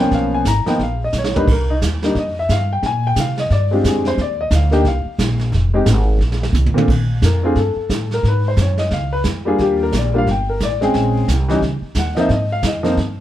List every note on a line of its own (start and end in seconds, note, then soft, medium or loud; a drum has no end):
0.00 0.41 F3 medium
0.00 0.42 A#3 medium
0.00 0.42 B3 medium
0.00 0.43 C#4 medium
0.00 0.11 G5 loud
0.11 0.44 B1 medium
0.11 0.33 F5 medium
0.11 brush sweep soft
0.11 kick soft
0.11 snare soft
0.34 0.46 G#5 medium
0.45 0.64 G#1 medium
0.45 0.67 A#5 medium
0.45 kick soft
0.45 snare medium
0.45 hi-hat pedal medium
0.66 0.78 F3 medium
0.66 0.78 A#3 medium
0.66 0.78 B3 medium
0.66 0.79 D#4 medium
0.66 0.79 G5 medium
0.66 muted upright bass stroke soft
0.66 snare soft
0.79 1.12 A#1 medium
0.79 1.01 F5 medium
0.79 brush sweep soft
0.79 kick soft
0.79 snare soft
1.04 1.15 D#5 medium
1.13 1.46 B1 medium
1.13 snare soft
1.13 hi-hat pedal soft
1.18 1.36 C#5 medium
1.24 snare medium
1.34 1.46 G3 medium
1.34 1.46 A#3 medium
1.34 1.46 D4 medium
1.34 1.47 D#4 medium
1.34 1.47 B4 medium
1.34 floor tom medium
1.48 1.80 C2 medium
1.48 brush sweep soft
1.48 kick medium
1.48 snare soft
1.48 crash medium
1.52 1.70 A#4 medium
1.70 1.77 D#4 medium
1.81 2.14 D#2 medium
1.81 kick soft
1.81 snare medium
1.81 hi-hat pedal medium
2.02 2.14 G3 medium
2.02 2.14 A#3 medium
2.02 2.14 D4 medium
2.02 2.15 D#4 medium
2.02 snare soft
2.15 2.47 F2 medium
2.15 2.37 D#5 medium
2.15 brush sweep soft
2.15 kick soft
2.15 snare soft
2.39 2.50 E5 medium
2.49 2.81 G2 medium
2.49 2.70 F5 medium
2.49 kick soft
2.49 snare medium
2.49 hi-hat pedal soft
2.73 2.83 G5 medium
2.83 3.15 A#2 medium
2.83 3.04 G#5 medium
2.83 brush sweep soft
2.83 kick soft
2.83 snare soft
3.07 3.17 G5 loud
3.16 3.49 C3 medium
3.16 3.38 F5 medium
3.16 kick soft
3.16 snare medium
3.16 hi-hat pedal medium
3.37 3.51 D#5 medium
3.37 snare soft
3.50 3.82 G2 medium
3.50 3.71 D5 medium
3.50 brush sweep soft
3.50 kick soft
3.50 snare soft
3.71 4.15 G#3 medium
3.71 4.15 C4 medium
3.71 4.15 D4 medium
3.71 3.85 F4 medium
3.71 4.16 G4 medium
3.84 4.16 F2 medium
3.84 kick soft
3.84 snare medium
3.84 hi-hat pedal medium
3.88 4.06 G#4 medium
4.05 4.18 C5 medium
4.05 snare soft
4.18 4.50 D#2 medium
4.18 4.40 D5 medium
4.18 brush sweep soft
4.18 kick soft
4.18 snare soft
4.41 4.52 D#5 medium
4.51 4.83 D2 loud
4.51 kick soft
4.51 snare medium
4.51 hi-hat pedal medium
4.55 4.73 F5 medium
4.71 4.83 A#3 medium
4.71 4.83 D4 medium
4.71 4.84 D#4 medium
4.71 4.84 G4 medium
4.71 4.85 G5 loud
4.71 snare soft
4.85 5.04 C2 medium
4.85 5.50 F5 medium
4.85 brush sweep soft
4.85 kick soft
4.85 snare soft
5.05 muted upright bass stroke soft
5.19 5.51 A#1 medium
5.19 kick soft
5.19 snare medium
5.19 hi-hat pedal medium
5.39 snare soft
5.52 5.85 F1 medium
5.52 brush sweep soft
5.52 kick soft
5.52 snare soft
5.74 5.85 G#3 medium
5.74 5.85 C4 medium
5.74 5.85 D#4 medium
5.74 5.86 G4 medium
5.86 6.18 G#1 loud
5.86 kick soft
5.86 snare medium
5.86 hi-hat pedal medium
6.19 6.52 A#1 medium
6.19 snare soft
6.32 snare medium
6.43 snare medium
6.53 6.73 C2 medium
6.53 hi-hat pedal soft
6.53 high tom medium
6.66 high tom medium
6.74 6.86 A#2 medium
6.74 6.86 A3 medium
6.74 6.86 C4 medium
6.74 6.87 D4 medium
6.74 6.87 F4 medium
6.74 high tom medium
6.88 7.21 A#1 medium
6.88 brush sweep soft
6.88 kick medium
6.88 snare soft
6.88 crash medium
7.22 7.54 F2 medium
7.22 7.44 A#4 medium
7.22 kick soft
7.22 snare medium
7.22 hi-hat pedal medium
7.43 7.54 A3 medium
7.43 7.54 C4 medium
7.43 7.55 D4 medium
7.43 7.55 F4 medium
7.43 7.56 G#4 medium
7.56 7.75 G2 medium
7.56 8.08 A4 medium
7.56 brush sweep soft
7.56 kick soft
7.56 snare soft
7.76 muted upright bass stroke soft
7.89 8.22 A2 medium
7.89 kick soft
7.89 snare medium
7.89 hi-hat pedal medium
8.11 8.24 A#4 medium
8.11 snare soft
8.23 8.56 G#2 medium
8.23 brush sweep medium
8.23 kick soft
8.23 snare soft
8.28 8.46 B4 medium
8.48 8.58 C5 medium
8.57 8.89 F#2 medium
8.57 kick soft
8.57 snare medium
8.57 hi-hat pedal medium
8.62 8.79 C#5 medium
8.78 8.91 D#5 medium
8.78 snare soft
8.91 9.24 C#2 medium
8.91 9.12 F5 medium
8.91 brush sweep soft
8.91 kick soft
8.91 snare soft
9.13 9.20 B4 medium
9.24 9.57 F2 medium
9.24 kick soft
9.24 snare medium
9.24 hi-hat pedal medium
9.45 9.89 G3 medium
9.45 9.90 A#3 medium
9.45 9.90 D4 medium
9.45 9.90 F4 medium
9.45 9.59 G#4 medium
9.58 9.91 D#2 medium
9.58 9.80 G4 medium
9.58 brush sweep soft
9.58 kick soft
9.58 snare soft
9.83 9.93 A#4 medium
9.92 10.25 A#1 medium
9.92 kick soft
9.92 snare medium
9.92 hi-hat pedal medium
9.97 10.15 D5 medium
10.14 10.25 G3 medium
10.14 10.25 A#3 medium
10.14 10.25 D4 medium
10.14 10.26 F4 medium
10.18 10.28 F5 medium
10.27 10.59 G1 medium
10.27 brush sweep medium
10.27 kick soft
10.27 snare soft
10.31 10.49 G5 medium
10.49 10.61 A#4 medium
10.60 10.93 A1 medium
10.60 10.82 D5 medium
10.60 kick soft
10.60 snare medium
10.60 hi-hat pedal medium
10.81 11.25 G#3 medium
10.81 11.25 C4 medium
10.81 11.26 C#4 medium
10.81 11.26 G#4 medium
10.81 11.59 G5 medium
10.81 snare soft
10.94 11.26 A#1 medium
10.94 brush sweep soft
10.94 kick soft
10.94 snare soft
11.28 11.60 C2 medium
11.28 kick soft
11.28 snare medium
11.28 hi-hat pedal medium
11.48 11.60 E3 medium
11.48 11.60 G3 medium
11.48 11.61 C#4 medium
11.48 11.61 D#4 medium
11.48 snare soft
11.61 11.81 C#2 medium
11.61 brush sweep soft
11.61 kick soft
11.61 snare soft
11.82 muted upright bass stroke soft
11.95 12.28 D#2 medium
11.95 kick soft
11.95 snare medium
11.95 hi-hat pedal medium
11.99 12.17 F#5 medium
12.16 12.28 F3 medium
12.16 12.28 A#3 medium
12.16 12.28 C4 medium
12.16 12.29 D#4 medium
12.16 12.30 E5 medium
12.16 snare soft
12.29 12.62 G#2 medium
12.29 brush sweep soft
12.29 kick soft
12.29 snare soft
12.34 12.52 D#5 medium
12.52 12.64 F5 loud
12.63 12.95 F2 medium
12.63 12.85 D#5 medium
12.63 kick soft
12.63 snare medium
12.63 hi-hat pedal medium
12.83 12.95 F3 medium
12.83 12.95 A#3 medium
12.83 12.95 C4 medium
12.83 12.96 D#4 medium
12.83 snare soft
12.97 13.20 G2 medium
12.97 brush sweep soft
12.97 kick soft
12.97 snare soft